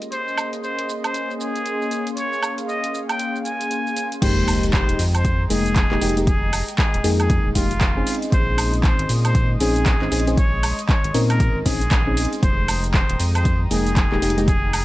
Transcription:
Already playing: A#3 C#4 G#4 D#5 C6
0.02 closed hi-hat, shaker
0.12 C5, closed hi-hat, shaker
0.28 shaker
0.38 high woodblock, shaker
0.53 closed hi-hat, shaker
0.63 C5, shaker
0.79 closed hi-hat, shaker
0.89 shaker
1.04 C5, closed hi-hat, high woodblock, shaker
1.14 closed hi-hat, shaker
1.30 shaker
1.40 G#4, shaker
1.56 closed hi-hat, shaker
1.66 closed hi-hat, shaker
1.82 shaker
1.91 F5, closed hi-hat, shaker
2.07 closed hi-hat, shaker
2.17 C#5, closed hi-hat, shaker
2.33 shaker
2.43 high woodblock, shaker
2.58 closed hi-hat, shaker
2.68 D#5, shaker
2.84 closed hi-hat, shaker
2.94 shaker
3.09 G5, closed hi-hat, high woodblock, shaker
3.19 closed hi-hat, shaker
3.36 shaker
3.45 G#5, closed hi-hat, shaker
3.61 closed hi-hat, shaker
3.71 closed hi-hat, shaker
3.87 shaker
3.96 closed hi-hat, shaker
4.12 closed hi-hat, shaker
4.22 F1 G#3 A#3 D#4 G4 C5 D#5 G5 A#5, kick, closed hi-hat, crash, sub drop, shaker
4.48 open hi-hat, ride, high woodblock, shaker
4.63 closed hi-hat, shaker
4.73 C5, kick, clap, shaker
4.89 D#1, closed hi-hat
4.99 F2, open hi-hat, ride, shaker
5.15 C5, closed hi-hat, high woodblock, shaker
5.25 kick, closed hi-hat, shaker
5.50 F1 G#3 A#3 D#4 G#4, open hi-hat, ride, shaker
5.66 closed hi-hat, shaker
5.76 kick, clap, closed hi-hat, shaker
5.91 D#1 G#3 A#3 D#4 G4, clap
6.01 F1 G#3 A#3 D#4 G4, open hi-hat, ride, shaker
6.09 closed hi-hat
6.17 G#3 A#3 D#4 G4, closed hi-hat, shaker
6.27 G#4, kick, closed hi-hat, shaker
6.53 open hi-hat, ride, high woodblock, shaker
6.68 closed hi-hat, shaker
6.78 G#4, kick, clap, shaker
6.94 D#1, closed hi-hat
7.04 F2 G#3 A#3 D#4 G#4, open hi-hat, ride, shaker
7.20 G#4, closed hi-hat, high woodblock, shaker
7.30 kick, closed hi-hat, shaker
7.45 D#1
7.55 F1 G#3 A#3 D#4 F4 G4, kick, open hi-hat, ride, shaker
7.71 closed hi-hat, shaker
7.81 kick, clap, closed hi-hat, shaker
7.96 C4 C#4 D#4 G#4
8.07 D#5 C6 D#6, open hi-hat, ride, shaker
8.15 closed hi-hat
8.22 closed hi-hat, shaker
8.32 A#1 C5, kick, closed hi-hat, shaker
8.58 open hi-hat, ride, high woodblock, shaker
8.73 closed hi-hat, shaker
8.84 C5, kick, clap, shaker
8.99 G#1, closed hi-hat
9.09 A#2, open hi-hat, ride, shaker
9.25 C5, closed hi-hat, high woodblock, shaker
9.35 kick, closed hi-hat, shaker
9.60 A#1 C4 C#4 D#4 G#4, open hi-hat, ride, shaker
9.76 closed hi-hat, shaker
9.86 kick, clap, closed hi-hat, shaker
10.02 G#1 C4 C#4 D#4 G#4, clap
10.12 A#1 C4 C#4 D#4 G#4, open hi-hat, ride, shaker
10.20 closed hi-hat
10.27 C4 C#4 D#4 G#4, closed hi-hat, shaker
10.37 C#5, kick, closed hi-hat, shaker
10.63 open hi-hat, ride, high woodblock, shaker
10.79 closed hi-hat, shaker
10.89 C#5, kick, clap, shaker
11.04 G#1, closed hi-hat
11.14 A#2 C4 C#4 D#4 A#4, open hi-hat, ride, shaker
11.30 A#4, closed hi-hat, high woodblock, shaker
11.40 kick, closed hi-hat, shaker
11.56 G#1
11.66 A#1 C4 C#4 D#4 G#4, kick, open hi-hat, ride, shaker
11.81 closed hi-hat, shaker
11.91 kick, clap, closed hi-hat, shaker
12.07 C4 C#4 D#4 G#4
12.17 open hi-hat, ride, shaker
12.25 closed hi-hat
12.33 closed hi-hat, shaker
12.43 F1 C5 G5 A#5 D#6, kick, closed hi-hat, shaker
12.68 open hi-hat, ride, high woodblock, shaker
12.84 closed hi-hat, shaker
12.94 C5, kick, clap, shaker
13.09 D#1, closed hi-hat
13.20 F2, open hi-hat, ride, shaker
13.35 C5, closed hi-hat, high woodblock, shaker
13.45 kick, closed hi-hat, shaker
13.71 F1 G#3 A#3 D#4 G#4, open hi-hat, ride, shaker
13.87 closed hi-hat, shaker
13.96 kick, clap, closed hi-hat, shaker
14.12 D#1 G#3 A#3 D#4 G4, clap
14.22 F1 G#3 A#3 D#4 G4, open hi-hat, ride, shaker
14.30 closed hi-hat
14.38 G#3 A#3 D#4 G4, closed hi-hat, shaker
14.48 G#4 F6, kick, closed hi-hat, shaker
14.73 open hi-hat, ride, high woodblock, shaker

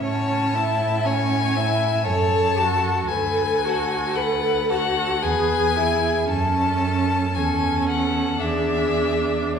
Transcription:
0.03 A2 C#4 C#5 A5
0.54 E4 E5
1.04 C#4 C#5 G#5
1.56 E4 E5
2.05 F#2 A4 C#5 A5
2.58 F#4 A4
3.08 D2 A4 B4 G#5
3.64 F#4 A4
4.15 A4 B4 F#5
4.69 F#4 A4 F#5
5.23 E2 G#4 B4 G#5
5.76 E4 G#4
6.29 F#2 C#4 A4 A5
7.35 E2 C#4 A4 G#5
7.89 F#5
8.40 E2 D4 G#4 E5

